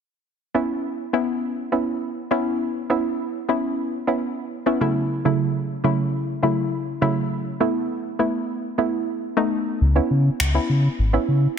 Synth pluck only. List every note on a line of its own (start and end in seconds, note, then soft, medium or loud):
0.54 1.04 B3 medium
0.54 1.04 C#4 medium
0.54 1.04 E4 loud
1.13 1.63 B3 medium
1.13 1.63 C#4 medium
1.13 1.63 E4 loud
1.72 2.22 B3 medium
1.72 2.22 C#4 medium
1.72 2.22 E4 medium
2.31 2.81 B3 medium
2.31 2.81 C#4 medium
2.31 2.81 E4 loud
2.90 3.39 B3 medium
2.90 3.40 C#4 medium
2.90 3.40 E4 loud
3.49 3.98 B3 medium
3.49 3.98 C#4 medium
3.49 3.99 E4 loud
4.07 4.57 B3 medium
4.07 4.57 C#4 medium
4.07 4.57 E4 medium
4.66 4.81 B3 loud
4.66 4.81 C#4 medium
4.66 4.80 E4 loud
4.81 5.18 C#3 medium
4.81 5.18 F#3 medium
4.81 5.18 A3 medium
4.81 5.18 E4 loud
5.25 5.75 C#3 medium
5.25 5.75 F#3 medium
5.25 5.75 A3 medium
5.25 5.75 E4 loud
5.84 6.34 C#3 medium
5.84 6.34 F#3 medium
5.84 6.34 A3 medium
5.84 6.34 E4 loud
6.43 6.92 C#3 medium
6.43 6.92 F#3 medium
6.43 6.93 A3 medium
6.43 6.93 E4 medium
7.01 7.46 C#3 medium
7.01 7.46 F#3 medium
7.01 7.46 A3 medium
7.01 7.46 E4 loud
7.60 8.10 A3 medium
7.60 8.10 B3 medium
7.60 8.10 E4 medium
8.19 8.69 A3 medium
8.19 8.69 B3 medium
8.19 8.69 E4 medium
8.78 9.28 A3 medium
8.78 9.28 B3 medium
8.78 9.28 E4 medium
9.37 9.81 A3 loud
9.37 9.81 B3 medium
9.37 9.81 D#4 loud
9.96 10.45 B3 medium
9.96 10.45 C#4 medium
9.96 10.46 E4 medium
10.54 11.04 B3 medium
10.54 11.04 C#4 medium
10.54 11.04 E4 loud
11.13 11.58 B3 medium
11.13 11.58 C#4 medium
11.13 11.58 E4 medium